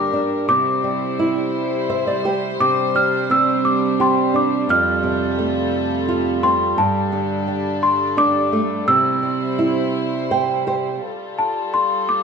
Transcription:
0.00 0.45 G2 medium
0.00 0.10 D3 soft
0.00 10.98 G3 medium
0.00 0.45 A#3 medium
0.00 0.48 D4 medium
0.00 0.47 G4 medium
0.00 0.47 A#4 medium
0.00 0.46 D6 loud
0.13 0.48 D4 medium
0.48 2.56 C3 medium
0.48 2.59 E4 medium
0.48 4.66 C5 medium
0.48 1.86 D6 loud
0.84 2.21 G3 soft
1.19 1.89 E4 medium
1.90 2.24 C5 medium
1.90 2.06 E5 medium
2.07 2.24 D5 medium
2.25 2.59 G4 medium
2.25 2.58 C5 medium
2.60 4.65 C3 medium
2.60 4.67 D4 medium
2.60 2.93 D6 medium
2.95 4.31 G3 medium
2.95 3.32 F6 medium
3.30 4.65 C4 medium
3.30 3.67 E6 medium
3.65 4.01 D6 medium
4.00 4.67 G4 medium
4.00 4.36 C6 medium
4.34 4.68 D4 medium
4.34 4.71 D6 medium
4.69 6.73 F2 medium
4.69 6.75 F4 medium
4.69 6.76 A4 medium
4.69 5.35 F6 medium
5.03 6.38 C3 medium
5.39 6.74 A3 medium
6.09 6.76 F4 medium
6.43 6.77 C4 medium
6.43 6.79 C6 medium
6.78 8.84 G2 medium
6.78 8.86 D4 medium
6.78 8.86 A4 medium
6.78 7.86 A5 medium
7.12 8.48 D3 soft
7.48 8.84 G3 medium
7.83 8.19 C6 medium
8.17 8.85 D4 medium
8.17 8.90 D6 loud
8.53 8.87 A3 medium
8.87 10.99 C3 medium
8.87 11.00 E4 medium
8.87 11.00 C5 medium
8.87 10.63 E6 loud
9.23 10.62 G3 soft
9.59 10.31 E4 medium
10.31 10.66 C5 medium
10.31 10.64 G5 medium
10.67 11.02 G4 medium
10.67 11.00 C5 medium
11.02 12.23 G3 medium
11.02 12.23 F4 medium
11.02 12.23 A4 medium
11.39 11.71 A5 medium
11.74 12.10 C6 medium
12.09 12.23 D6 medium

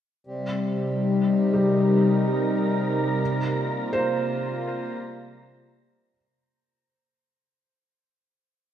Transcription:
0.25 6.16 C3 medium
0.25 6.26 C3 medium
0.25 6.26 G3 medium
0.30 3.21 G3 medium
0.30 6.20 A#5 medium
0.85 4.39 D#4 medium
1.36 6.16 A#4 medium
1.53 6.11 G3 soft
3.46 6.16 A#3 medium
3.51 6.15 F4 medium
3.93 6.09 C5 medium

